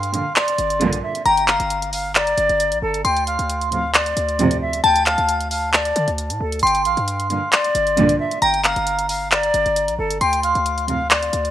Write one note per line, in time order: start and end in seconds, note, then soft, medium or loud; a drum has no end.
0.00 0.24 G2 loud
0.00 0.11 F5 medium
0.00 1.22 C6 loud
0.00 closed hi-hat medium
0.14 0.24 G2 medium
0.14 0.24 A#2 medium
0.14 0.24 D3 medium
0.14 0.33 F5 medium
0.14 closed hi-hat medium
0.36 0.99 D5 loud
0.36 clap loud
0.36 closed hi-hat medium
0.48 closed hi-hat medium
0.58 0.82 G1 loud
0.58 closed hi-hat medium
0.70 closed hi-hat medium
0.81 1.02 A#1 loud
0.81 1.00 G2 loud
0.81 1.00 A#2 loud
0.81 1.00 D3 loud
0.81 closed hi-hat medium
0.93 closed hi-hat medium
1.03 1.22 E5 medium
1.15 closed hi-hat medium
1.26 1.58 G1 loud
1.26 1.45 G5 loud
1.26 3.01 A#5 loud
1.26 closed hi-hat medium
1.37 closed hi-hat medium
1.48 1.90 F5 medium
1.48 clap medium
1.48 closed hi-hat medium
1.60 2.34 G1 loud
1.60 closed hi-hat soft
1.70 closed hi-hat medium
1.82 closed hi-hat medium
1.93 2.12 F5 medium
1.93 open hi-hat medium
2.15 2.78 D5 loud
2.15 clap loud
2.15 closed hi-hat medium
2.27 closed hi-hat medium
2.38 2.49 G1 loud
2.38 closed hi-hat medium
2.49 2.73 G1 loud
2.49 closed hi-hat medium
2.60 closed hi-hat medium
2.72 2.82 A#1 medium
2.72 closed hi-hat medium
2.82 3.04 G1 loud
2.82 3.02 A4 medium
2.94 closed hi-hat medium
3.04 3.38 D2 loud
3.04 3.24 G5 loud
3.04 4.80 C6 medium
3.04 closed hi-hat medium
3.17 closed hi-hat medium
3.27 3.69 F5 medium
3.27 closed hi-hat medium
3.39 4.14 D2 loud
3.39 closed hi-hat soft
3.50 closed hi-hat medium
3.61 closed hi-hat medium
3.72 3.82 F2 medium
3.72 3.82 A2 medium
3.72 3.82 C3 medium
3.72 3.91 F5 medium
3.72 closed hi-hat medium
3.94 4.57 D5 medium
3.94 clap loud
3.94 closed hi-hat medium
4.06 closed hi-hat medium
4.17 4.81 D2 loud
4.17 closed hi-hat medium
4.29 closed hi-hat medium
4.39 4.58 F2 loud
4.39 4.58 A2 loud
4.39 4.58 C3 loud
4.39 closed hi-hat medium
4.51 closed hi-hat medium
4.61 4.81 E5 medium
4.73 closed hi-hat medium
4.84 5.17 D2 loud
4.84 5.03 G5 loud
4.84 6.59 A5 loud
4.84 closed hi-hat medium
4.96 closed hi-hat medium
5.06 5.48 F5 medium
5.06 clap loud
5.06 closed hi-hat medium
5.18 5.93 D2 loud
5.18 closed hi-hat soft
5.29 closed hi-hat medium
5.41 closed hi-hat medium
5.51 5.70 F5 medium
5.51 open hi-hat medium
5.73 6.10 D5 loud
5.73 clap loud
5.73 closed hi-hat medium
5.85 closed hi-hat medium
5.96 6.07 D3 loud
5.96 closed hi-hat medium
6.08 6.32 D2 loud
6.08 closed hi-hat medium
6.18 closed hi-hat medium
6.30 6.40 A2 loud
6.30 closed hi-hat medium
6.40 6.62 D2 loud
6.40 6.60 A4 medium
6.52 closed hi-hat medium
6.59 6.87 G1 loud
6.59 6.82 G5 loud
6.59 8.38 C6 loud
6.59 closed hi-hat medium
6.67 closed hi-hat medium
6.75 closed hi-hat medium
6.85 6.97 A#1 loud
6.85 7.28 F5 medium
6.85 closed hi-hat medium
6.97 7.40 G2 loud
6.97 closed hi-hat soft
7.08 closed hi-hat medium
7.20 closed hi-hat medium
7.30 7.40 G2 medium
7.30 7.40 A#2 medium
7.30 7.40 D3 medium
7.30 7.50 F5 medium
7.30 closed hi-hat medium
7.52 8.16 D5 medium
7.52 clap loud
7.52 closed hi-hat medium
7.64 closed hi-hat medium
7.75 7.99 G1 loud
7.75 closed hi-hat medium
7.87 closed hi-hat medium
7.97 8.18 A#1 loud
7.97 8.16 G2 loud
7.97 8.16 A#2 loud
7.97 8.16 D3 loud
7.97 closed hi-hat medium
8.09 closed hi-hat medium
8.19 8.39 E5 medium
8.31 closed hi-hat medium
8.42 8.75 G1 loud
8.42 8.61 G5 loud
8.42 10.17 A#5 loud
8.42 closed hi-hat medium
8.54 closed hi-hat medium
8.64 9.06 F5 medium
8.64 clap medium
8.64 closed hi-hat medium
8.76 9.51 G1 loud
8.76 closed hi-hat soft
8.87 closed hi-hat medium
8.99 closed hi-hat medium
9.09 9.28 F5 medium
9.09 open hi-hat medium
9.31 9.95 D5 loud
9.31 clap loud
9.31 closed hi-hat medium
9.43 closed hi-hat medium
9.54 9.65 G1 loud
9.54 closed hi-hat medium
9.66 9.90 G1 loud
9.66 closed hi-hat medium
9.76 closed hi-hat medium
9.88 9.98 A#1 loud
9.88 closed hi-hat medium
9.99 10.20 G1 loud
9.99 10.18 A4 medium
10.11 closed hi-hat medium
10.21 10.54 D2 loud
10.21 10.40 G5 loud
10.21 11.51 C6 medium
10.21 closed hi-hat medium
10.33 closed hi-hat medium
10.43 10.86 F5 medium
10.43 closed hi-hat medium
10.55 11.30 D2 loud
10.55 closed hi-hat soft
10.66 closed hi-hat medium
10.78 closed hi-hat medium
10.88 10.98 F2 medium
10.88 10.98 A2 medium
10.88 10.98 C3 medium
10.88 11.08 F5 medium
10.88 closed hi-hat medium
11.10 11.51 D5 medium
11.10 clap loud
11.10 closed hi-hat medium
11.22 closed hi-hat medium
11.33 11.51 D2 loud
11.33 closed hi-hat medium
11.45 closed hi-hat medium